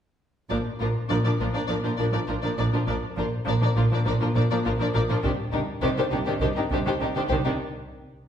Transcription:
0.50 double bass section A#1, cello section A#2, viola section F3 D4, violin section A#4 D5
0.81 double bass section A#1, cello section A#2, viola section F3 D4, violin section F4 A#4
1.09 double bass section A#1, cello section A#2, viola section F3 D4, violin section A#4 D5
1.24 cello section A#2, viola section F3 D4, violin section A#4 D5
1.40 double bass section A#1, cello section A#2, viola section F3 D4, violin section F4 A#4
1.53 cello section A#2, viola section F3 D4, violin section A#4 D5
1.68 double bass section A#1, cello section A#2, viola section F3 D4, violin section A#4 D5
1.83 cello section A#2, viola section F3 D4, violin section F4 A#4
1.98 double bass section A#1, cello section A#2, viola section F3 D4, violin section A#4 D5
2.12 cello section A#2, viola section F3 D4, violin section A#4 D5
2.28 double bass section A#1, cello section A#2, viola section F3 D4, violin section F4 A#4
2.43 cello section A#2, viola section F3 D4, violin section A#4 D5
2.57 double bass section A#1, cello section A#2, viola section F3 D4, violin section A#4 D5
2.73 cello section A#2, viola section F3 D4, violin section F4 A#4
2.87 double bass section A#1, cello section A#2, viola section F3 D4, violin section A#4 D5
3.16 double bass section A#1, cello section A#2, viola section F3 D4, violin section F4 A#4
3.45 double bass section A#1, cello section A#2, viola section F3 D4, violin section A#4 D5
3.61 cello section A#2, viola section F3 D4, violin section A#4 D5
3.76 double bass section A#1, cello section A#2, viola section F3 D4, violin section F4 A#4
3.91 cello section A#2, viola section F3 D4, violin section A#4 D5
4.05 double bass section A#1, cello section A#2, viola section F3 D4, violin section A#4 D5
4.21 cello section A#2, viola section F3 D4, violin section F4 A#4
4.35 double bass section A#1, cello section A#2, viola section F3 D4, violin section A#4 D5
4.51 cello section A#2, viola section F3 D4, violin section A#4 D5
4.65 double bass section A#1, cello section A#2, viola section F3 D4, violin section F4 A#4
4.79 cello section A#2, viola section F3 D4, violin section A#4 D5
4.94 double bass section A#1, cello section A#2, viola section F3 D4, violin section A#4 D5
5.10 cello section A#2, viola section F3 D4, violin section F4 A#4
5.23 double bass section C2, cello section C3, viola section D#3 D4, violin section G4 C5
5.53 double bass section C2, cello section C3, viola section D#3 D4, violin section D#4 G4
5.82 double bass section C2, cello section C3, viola section D#3 D4, violin section G4 C5
5.98 cello section C3, viola section D#3 D4, violin section G4 C5
6.12 double bass section C2, cello section C3, viola section D#3 D4, violin section D#4 G4
6.26 cello section C3, viola section D#3 D4, violin section G4 C5
6.41 double bass section C2, cello section C3, viola section D#3 D4, violin section G4 C5
6.57 cello section C3, viola section D#3 D4, violin section D#4 G4
6.71 double bass section C2, cello section C3, viola section D#3 D4, violin section G4 C5
6.86 cello section C3, viola section D#3 D4, violin section G4 C5
7.00 double bass section C2, cello section C3, viola section D#3 D4, violin section D#4 G4
7.16 cello section C3, viola section D#3 D4, violin section G4 C5
7.29 double bass section C2, cello section C3, viola section D#3 D4, violin section G4 C5
7.45 cello section C3, viola section D#3 D4, violin section D#4 G4

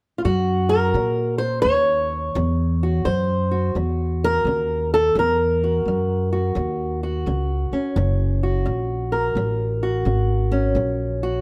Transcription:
0.18 steel-string acoustic guitar F4
0.25 upright bass F#2, steel-string acoustic guitar F#2 F#4
0.69 steel-string acoustic guitar A#4
0.94 upright bass A#2, steel-string acoustic guitar F#3
1.38 steel-string acoustic guitar C5
1.62 upright bass D#2, steel-string acoustic guitar C#3 C#5
2.35 upright bass E2, steel-string acoustic guitar F#3
2.83 steel-string acoustic guitar F#4
3.05 upright bass F#2, steel-string acoustic guitar F#2 C5
3.51 steel-string acoustic guitar F#4
3.75 upright bass E2, steel-string acoustic guitar F#3
4.24 steel-string acoustic guitar A#4
4.45 upright bass D#2, steel-string acoustic guitar C#3
4.94 steel-string acoustic guitar A4
5.15 upright bass E2, steel-string acoustic guitar F#3 A#4
5.64 steel-string acoustic guitar F#4
5.85 upright bass F#2, steel-string acoustic guitar F#2
6.33 steel-string acoustic guitar F#4
6.55 upright bass D#2, steel-string acoustic guitar F#3
7.03 steel-string acoustic guitar F#4
7.26 upright bass C#2, steel-string acoustic guitar C#3
7.72 steel-string acoustic guitar C#4, muted upright bass stroke
7.96 upright bass F#1, steel-string acoustic guitar F#3
8.43 steel-string acoustic guitar F#4
8.66 upright bass A#1, steel-string acoustic guitar F#2
9.12 steel-string acoustic guitar A#4
9.35 upright bass A1, steel-string acoustic guitar F#3
9.83 steel-string acoustic guitar F#4
10.05 upright bass G#1, steel-string acoustic guitar C#3
10.52 steel-string acoustic guitar C#4
10.75 upright bass A#1, steel-string acoustic guitar F#3
11.23 steel-string acoustic guitar F#4

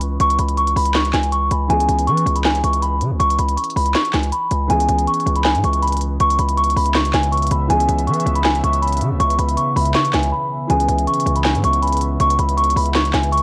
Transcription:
Already playing: 808-style bass C#2, felt piano E3 B3 C#4 G#4
0.01 closed hi-hat
0.20 808-style bass C#2, celesta C#6, closed hi-hat
0.30 closed hi-hat
0.39 808-style bass C#2, celesta B5, closed hi-hat
0.49 closed hi-hat
0.57 celesta C#6, closed hi-hat
0.67 closed hi-hat
0.76 808-style bass C#2, celesta B5, open hi-hat
0.86 closed hi-hat
0.94 celesta C#6, snare, clap, closed hi-hat
1.05 closed hi-hat
1.13 808-style bass C#2, celesta G#5, snare, clap, closed hi-hat
1.23 closed hi-hat
1.32 celesta C#6, closed hi-hat
1.51 808-style bass C#2, celesta B5, closed hi-hat
1.68 808-style bass C#2, felt piano E3 B3 C#4, celesta G#5, closed hi-hat
1.72 felt piano G#4
1.80 closed hi-hat
1.89 808-style bass C#2, closed hi-hat
1.99 closed hi-hat
2.07 808-style bass E3, celesta C#6, closed hi-hat
2.18 closed hi-hat
2.26 808-style bass C#2, closed hi-hat
2.36 celesta B5, closed hi-hat
2.44 celesta G#5, snare, clap, closed hi-hat
2.55 closed hi-hat
2.64 808-style bass C#2, celesta C#6, closed hi-hat
2.73 closed hi-hat
2.82 celesta B5, closed hi-hat
3.01 808-style bass C#3, closed hi-hat
3.11 808-style bass C#2
3.20 808-style bass C#2, celesta C#6, closed hi-hat
3.30 closed hi-hat
3.39 808-style bass C#2, celesta B5, closed hi-hat
3.49 closed hi-hat
3.57 celesta C#6, closed hi-hat
3.64 closed hi-hat
3.70 closed hi-hat
3.76 808-style bass C#2, celesta B5, open hi-hat
3.86 closed hi-hat
3.94 celesta C#6, snare, clap, closed hi-hat
4.05 closed hi-hat
4.13 808-style bass C#2, celesta G#5, snare, clap, closed hi-hat
4.23 closed hi-hat
4.32 celesta B5, closed hi-hat
4.51 808-style bass C#2, closed hi-hat
4.68 808-style bass C#2, ambient pad C#3 B3 E5, felt piano E3 B3 C#4, celesta G#5, closed hi-hat
4.72 felt piano G#4
4.80 closed hi-hat
4.89 808-style bass C#2, closed hi-hat
4.99 closed hi-hat
5.07 celesta C#6, closed hi-hat
5.14 closed hi-hat
5.20 closed hi-hat
5.26 808-style bass C#2, closed hi-hat
5.36 celesta B5, closed hi-hat
5.44 celesta G#5, snare, clap, closed hi-hat
5.55 808-style bass G#2, closed hi-hat
5.64 808-style bass C#2, celesta C#6, closed hi-hat
5.73 closed hi-hat
5.82 celesta B5, closed hi-hat
5.87 closed hi-hat
5.92 closed hi-hat
5.97 closed hi-hat
6.01 closed hi-hat
6.20 808-style bass C#2, celesta C#6, closed hi-hat
6.30 closed hi-hat
6.39 808-style bass C#2, celesta B5, closed hi-hat
6.49 closed hi-hat
6.57 celesta C#6, closed hi-hat
6.64 closed hi-hat
6.70 closed hi-hat
6.76 808-style bass C#2, celesta B5, open hi-hat
6.86 closed hi-hat
6.94 celesta C#6, snare, clap, closed hi-hat
7.05 closed hi-hat
7.13 808-style bass C#2, celesta G#5, snare, clap, closed hi-hat
7.23 closed hi-hat
7.32 celesta C#6, closed hi-hat
7.37 closed hi-hat
7.42 closed hi-hat
7.47 closed hi-hat
7.51 808-style bass C#2, celesta B5, closed hi-hat
7.68 808-style bass C#2, felt piano E3 B3 C#4, celesta G#5, closed hi-hat
7.72 felt piano G#4
7.80 closed hi-hat
7.89 808-style bass C#2, closed hi-hat
7.99 closed hi-hat
8.07 808-style bass E3, celesta C#6, closed hi-hat
8.14 closed hi-hat
8.20 closed hi-hat
8.26 808-style bass C#2, closed hi-hat
8.35 celesta B5, closed hi-hat
8.44 celesta G#5, snare, clap, closed hi-hat
8.55 closed hi-hat
8.64 808-style bass C#2, celesta C#6, closed hi-hat
8.73 closed hi-hat
8.82 celesta B5, closed hi-hat
8.88 closed hi-hat
8.93 closed hi-hat
8.97 closed hi-hat
9.01 808-style bass C#3, closed hi-hat
9.11 808-style bass C#2
9.20 808-style bass C#2, celesta C#6, closed hi-hat
9.30 closed hi-hat
9.39 808-style bass C#2, celesta B5, closed hi-hat
9.49 closed hi-hat
9.57 celesta C#6, closed hi-hat
9.76 808-style bass C#2, celesta B5, open hi-hat
9.86 closed hi-hat
9.94 celesta C#6, snare, clap, closed hi-hat
10.05 closed hi-hat
10.13 808-style bass C#2, celesta G#5, snare, clap, closed hi-hat
10.23 closed hi-hat
10.32 celesta B5
10.68 808-style bass C#2, felt piano E3 B3 C#4, celesta G#5, closed hi-hat
10.72 felt piano G#4
10.80 closed hi-hat
10.89 808-style bass C#2, closed hi-hat
10.99 closed hi-hat
11.07 celesta C#6, closed hi-hat
11.14 closed hi-hat
11.20 closed hi-hat
11.26 808-style bass C#2, closed hi-hat
11.36 celesta B5, closed hi-hat
11.44 celesta G#5, snare, clap, closed hi-hat
11.55 808-style bass G#2, closed hi-hat
11.64 808-style bass C#2, celesta C#6, closed hi-hat
11.73 closed hi-hat
11.82 celesta B5, closed hi-hat
11.87 closed hi-hat
11.93 closed hi-hat
11.97 closed hi-hat
12.01 closed hi-hat
12.20 808-style bass C#2, celesta C#6, closed hi-hat
12.30 closed hi-hat
12.39 808-style bass C#2, celesta B5, closed hi-hat
12.49 closed hi-hat
12.57 celesta C#6, closed hi-hat
12.64 closed hi-hat
12.70 closed hi-hat
12.76 808-style bass C#2, celesta B5, open hi-hat
12.86 closed hi-hat
12.94 celesta C#6, snare, clap, closed hi-hat
13.05 closed hi-hat
13.13 808-style bass C#2, celesta G#5, snare, clap, closed hi-hat
13.23 closed hi-hat
13.32 celesta C#6, closed hi-hat
13.38 closed hi-hat

